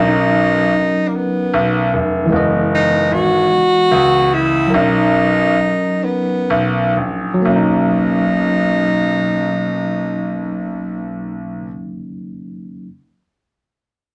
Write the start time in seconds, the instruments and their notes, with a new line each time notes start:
Already playing: grand piano B1, tine electric piano F#3 C#4 A#4, tenor saxophone D#4
0.01 tine electric piano D4
0.07 tine electric piano D#4
0.75 grand piano B1
1.08 tenor saxophone A#3
1.16 tenor saxophone B3
1.54 grand piano B1
1.93 grand piano F1
2.26 tine electric piano E3 G#3
2.32 grand piano F#1, tine electric piano B3 D#5
2.75 tenor saxophone D#4
3.11 grand piano G#1, tenor saxophone F#4
3.51 grand piano C#2
3.91 grand piano C#2
4.34 tenor saxophone E4
4.67 tine electric piano F#3 A#4
4.74 grand piano B1, tine electric piano C#4 D4, tenor saxophone D#4
4.84 tine electric piano D#4
5.60 grand piano B1
6.04 tenor saxophone B3
6.50 grand piano B1
6.96 grand piano A#1
7.34 tine electric piano F#3
7.42 grand piano B1, tine electric piano A#3, tenor saxophone D#4
7.49 tine electric piano C#4
7.56 tine electric piano D#4